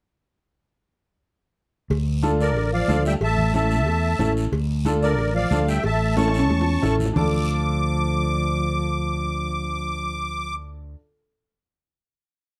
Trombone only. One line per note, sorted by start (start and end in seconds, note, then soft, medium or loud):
2.40 2.70 D3 medium
2.73 3.03 F3 medium
3.07 3.14 G3 medium
3.23 3.53 A3 medium
3.55 4.33 A3 medium
5.02 5.33 D3 medium
5.34 5.65 F3 medium
5.67 5.83 G3 medium
5.84 6.15 A3 medium
6.18 6.96 C#4 medium
7.17 10.56 F3 medium